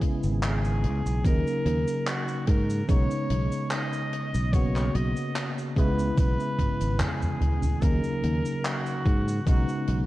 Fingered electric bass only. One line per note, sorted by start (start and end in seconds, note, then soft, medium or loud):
0.24 0.85 G#1 medium
0.84 1.01 C#2 medium
1.06 1.21 B1 medium
1.25 1.42 D#2 loud
1.66 1.83 D#2 loud
2.48 2.81 G#2 medium
2.89 3.06 B1 medium
3.30 3.48 B1 medium
4.35 4.88 B1 medium
4.95 5.12 B1 loud
5.77 6.10 C#2 medium
6.18 6.35 B1 loud
6.81 7.00 G#1 medium
7.82 8.00 D#2 loud
8.24 8.41 D#2 loud
9.06 9.39 G#2 medium
9.47 9.64 B1 loud
9.88 10.06 B1 medium